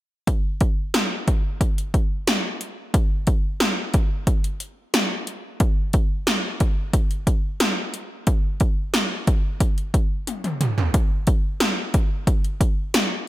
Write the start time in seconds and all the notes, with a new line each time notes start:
0.27 kick, closed hi-hat
0.61 kick, closed hi-hat
0.94 snare, closed hi-hat
1.28 kick, closed hi-hat
1.61 kick, closed hi-hat
1.78 closed hi-hat
1.94 kick, closed hi-hat
2.27 snare, closed hi-hat
2.61 closed hi-hat
2.94 kick, closed hi-hat
3.27 kick, closed hi-hat
3.60 snare, closed hi-hat
3.94 kick, closed hi-hat
4.27 kick, closed hi-hat
4.44 closed hi-hat
4.60 closed hi-hat
4.94 snare, closed hi-hat
5.27 closed hi-hat
5.60 kick, closed hi-hat
5.93 kick, closed hi-hat
6.27 snare, closed hi-hat
6.60 kick, closed hi-hat
6.93 kick, closed hi-hat
7.11 closed hi-hat
7.27 kick, closed hi-hat
7.60 snare, closed hi-hat
7.94 closed hi-hat
8.27 kick, closed hi-hat
8.60 kick, closed hi-hat
8.94 snare, closed hi-hat
9.27 kick, closed hi-hat
9.60 kick, closed hi-hat
9.78 closed hi-hat
9.94 kick, closed hi-hat
10.27 closed hi-hat, high tom
10.44 closed hi-hat, mid tom
10.61 closed hi-hat, mid tom
10.78 floor tom
10.94 kick, closed hi-hat
11.27 kick, closed hi-hat
11.60 snare, closed hi-hat
11.94 kick, closed hi-hat
12.27 kick, closed hi-hat
12.44 closed hi-hat
12.61 kick, closed hi-hat
12.94 snare, closed hi-hat